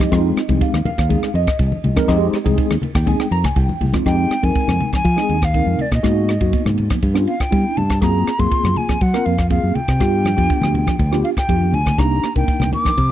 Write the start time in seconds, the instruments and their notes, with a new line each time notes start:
Already playing: tine electric piano D#5
0.00 kick, cross-stick, ride, high conga
0.11 fingered electric bass F2, tine electric piano G#3 C4 D#4 F4, kick, cross-stick, ride
0.36 muted fingered electric bass stroke, cross-stick, ride
0.48 fingered electric bass C2, tine electric piano G#3 C4 D#4 G4, kick, ride, high conga
0.61 tine electric piano F5, muted fingered electric bass stroke, kick, ride
0.73 fingered electric bass D#2, cross-stick
0.85 tine electric piano D#4 A#4 F5, muted fingered electric bass stroke, ride, high conga, low conga
0.98 fingered electric bass D#2, kick, cross-stick, ride
1.09 tine electric piano G#3 C4 D#4 G#4, kick, ride, high conga
1.22 muted fingered electric bass stroke, cross-stick
1.33 fingered electric bass F2, tine electric piano D#4 A#4 D#5, ride
1.47 kick, cross-stick, ride
1.59 fingered electric bass C2, kick, ride
1.72 high conga
1.84 fingered electric bass C2, tine electric piano D#4 G4, ride, low conga
1.96 tine electric piano G#3 C4 D#4 A#4, kick, cross-stick, ride, high conga
2.08 fingered electric bass F2, tine electric piano G#3 C4 D#4 G4, kick, cross-stick, ride
2.33 muted fingered electric bass stroke, cross-stick, ride
2.44 fingered electric bass C2, tine electric piano G#3 C4 D#4 G#4, kick, ride, high conga
2.58 muted fingered electric bass stroke, kick, ride
2.70 fingered electric bass D#2, cross-stick
2.82 tine electric piano D#4 A#4, muted fingered electric bass stroke, ride, low conga
2.95 fingered electric bass D#2, tine electric piano G5, kick, cross-stick, ride
3.06 tine electric piano G#3 C4 D#4 G#4 G#5, kick, ride, high conga
3.19 tine electric piano G5, muted fingered electric bass stroke, cross-stick
3.31 fingered electric bass F2, tine electric piano D#4 A#4 A#5, ride
3.44 tine electric piano G#5, kick, cross-stick, ride, low conga
3.56 fingered electric bass C2, tine electric piano G5, kick, ride
3.69 high conga
3.80 fingered electric bass C2, tine electric piano D#4 G#4, ride, low conga
3.93 tine electric piano G#3 C4 D#4 F4, kick, cross-stick, ride, high conga
4.06 fingered electric bass F2, tine electric piano G#3 C4 D#4 G4, flute G5, kick, cross-stick, ride
4.30 muted fingered electric bass stroke, cross-stick, ride
4.42 fingered electric bass F2, tine electric piano G#3 C4 D#4 A#4, flute G#5, kick, ride
4.55 muted fingered electric bass stroke, kick, ride
4.68 fingered electric bass F2, cross-stick, high conga, low conga
4.80 ride, low conga
4.92 flute G#5, muted fingered electric bass stroke, kick, cross-stick, ride, high conga
5.05 fingered electric bass F3, kick, ride
5.16 tine electric piano G#3 C4 D#4 G#4, cross-stick
5.29 fingered electric bass D#2, ride
5.42 tine electric piano D#4 G4, flute F5, kick, cross-stick, ride
5.54 tine electric piano G#3 C4 D#4 A#4, kick, ride
5.66 fingered electric bass F2
5.78 flute D5, muted fingered electric bass stroke, ride, low conga
5.91 fingered electric bass A#2, tine electric piano D#4 G#4, flute D#5, kick, cross-stick, ride
6.03 fingered electric bass G#2, tine electric piano A#3 B3 D#4 F#4, kick, cross-stick, ride
6.28 cross-stick, ride
6.40 fingered electric bass F#2, tine electric piano A#3 B3 D#4 F#4, kick, ride
6.53 kick, ride
6.65 fingered electric bass G#2, cross-stick, high conga, low conga
6.78 ride, low conga
6.90 kick, cross-stick, ride, high conga
7.02 fingered electric bass G2, kick, ride
7.14 tine electric piano B3 C#4 D4 F4, cross-stick
7.27 flute F5, ride
7.39 tine electric piano D4 F4, flute G5, muted fingered electric bass stroke, kick, cross-stick, ride
7.51 fingered electric bass G3, tine electric piano B3 C#4 D4 E4, kick, ride
7.77 fingered electric bass G2, flute A5, ride, low conga
7.88 tine electric piano D4 F4, kick, cross-stick, ride
8.01 fingered electric bass F#2, tine electric piano A#3 C4 F4 G#4, flute A#5, kick, cross-stick, ride
8.27 muted fingered electric bass stroke, cross-stick, ride
8.38 fingered electric bass F#2, tine electric piano A#3 C4 F4 G#4, flute C6, kick, ride
8.52 kick, ride
8.63 fingered electric bass F#2, cross-stick, high conga, low conga
8.76 flute G#5, ride, low conga
8.89 muted fingered electric bass stroke, kick, cross-stick, ride, high conga
9.01 fingered electric bass F#3, flute F#5, kick, ride
9.14 tine electric piano A#3 C4 F4 A#4, cross-stick
9.25 fingered electric bass F2, flute F5, ride
9.38 kick, cross-stick, ride
9.50 tine electric piano A#3 C4 F4 G#4, flute F5, kick, ride
9.63 fingered electric bass F#2
9.75 flute G5, muted fingered electric bass stroke, ride, low conga
9.88 fingered electric bass C3, tine electric piano F4 A#4, kick, cross-stick, ride
10.00 fingered electric bass G2, tine electric piano B3 D4 F4 G4, kick, cross-stick, ride
10.25 cross-stick, ride, high conga
10.36 fingered electric bass F2, tine electric piano B3 D4 F4 G4, kick, ride
10.50 muted fingered electric bass stroke, kick, ride
10.62 fingered electric bass D2, cross-stick, high conga, low conga
10.74 ride, low conga
10.87 kick, cross-stick, ride, high conga
10.99 fingered electric bass D2, kick, ride, high conga
11.12 tine electric piano B3 D4 F4 G4, cross-stick
11.24 flute F5, ride
11.37 flute G5, muted fingered electric bass stroke, kick, cross-stick, ride
11.48 fingered electric bass F2, tine electric piano B3 D4 F4 G4, kick, ride, high conga
11.60 high conga
11.73 fingered electric bass D2, flute G#5, ride, low conga
11.86 tine electric piano G4, kick, cross-stick, ride, low conga
11.98 fingered electric bass C2, tine electric piano A#3 D4 D#4 G4, flute A#5, kick, cross-stick, ride
12.23 cross-stick, ride
12.35 fingered electric bass C2, tine electric piano A#3 D4 D#4 A#4, flute G5, kick, ride
12.48 muted fingered electric bass stroke, kick, ride
12.60 fingered electric bass C2, cross-stick, high conga, low conga
12.73 flute D6, ride, low conga
12.85 muted fingered electric bass stroke, kick, cross-stick, ride, high conga
12.97 fingered electric bass C3, kick, ride